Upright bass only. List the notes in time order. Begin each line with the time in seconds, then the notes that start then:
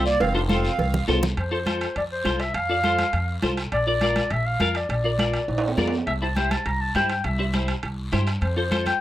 Already playing: C2
0.20 F1
0.78 C2
1.08 C2
1.37 F2
1.96 F2
2.25 C2
2.54 F2
3.13 F2
3.43 C2
3.72 A#1
4.31 A#1
4.60 F2
4.89 A#1
5.48 A#1
5.77 F2
6.07 C2
6.66 C2
6.95 G2
7.25 C2
7.83 C2
8.13 G2
8.42 F2